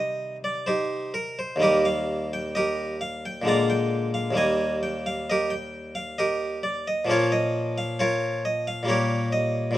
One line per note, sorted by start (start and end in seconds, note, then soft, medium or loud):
0.00 1.55 C3 medium
0.00 1.56 D#3 medium
0.00 1.56 G3 medium
0.00 1.57 C4 medium
0.00 0.36 D#5 loud
0.44 0.67 D5 loud
0.66 1.11 D#4 medium
0.66 1.11 G4 medium
0.66 1.14 C5 loud
1.14 1.38 A#4 loud
1.39 1.62 C5 loud
1.56 3.40 D#2 medium
1.56 3.40 D#3 medium
1.56 3.41 G3 medium
1.60 3.42 A#3 medium
1.60 1.84 G4 loud
1.60 1.84 A#4 loud
1.60 1.85 D#5 loud
1.85 2.32 F5 loud
2.33 2.56 G5 loud
2.55 2.99 G4 medium
2.55 2.99 A#4 medium
2.55 2.94 D#5 loud
3.01 3.24 F5 loud
3.25 3.47 G5 loud
3.42 4.32 A#2 medium
3.42 4.32 D3 medium
3.42 4.33 G#3 medium
3.46 4.34 A#3 medium
3.46 3.68 D5 loud
3.46 3.69 F5 medium
3.46 3.69 A#5 loud
3.70 4.08 G5 loud
4.14 4.37 F5 medium
4.31 7.02 D#2 medium
4.31 7.03 D#3 medium
4.31 7.04 G3 medium
4.35 7.05 A#3 medium
4.35 4.80 D#5 loud
4.35 4.76 G#5 loud
4.83 5.06 G5 loud
5.06 5.29 F5 loud
5.30 5.51 G4 loud
5.30 5.51 A#4 loud
5.30 5.52 D#5 loud
5.50 5.96 G5 loud
5.95 6.18 F5 loud
6.18 6.61 G4 medium
6.18 6.61 A#4 medium
6.18 6.57 D#5 loud
6.63 6.86 D5 loud
6.88 7.10 D#5 loud
7.05 8.82 A#2 medium
7.05 8.83 F3 medium
7.05 8.84 A#3 medium
7.09 8.84 C#4 medium
7.09 7.31 F4 loud
7.09 7.31 A#4 loud
7.09 7.32 C#5 loud
7.32 7.77 D#5 loud
7.78 8.00 F5 loud
7.99 8.41 F4 medium
7.99 8.41 A#4 medium
7.99 8.44 C#5 loud
8.45 8.67 D#5 loud
8.67 8.89 F5 loud
8.83 9.70 A#2 medium
8.83 9.72 G3 medium
8.83 9.73 A#3 medium
8.87 9.74 C#4 soft
8.87 9.31 G4 medium
8.87 9.31 A#4 medium
8.87 9.26 C#5 medium
9.32 9.77 D#5 loud
9.71 9.78 A#2 medium
9.71 9.78 G3 medium
9.71 9.78 C4 medium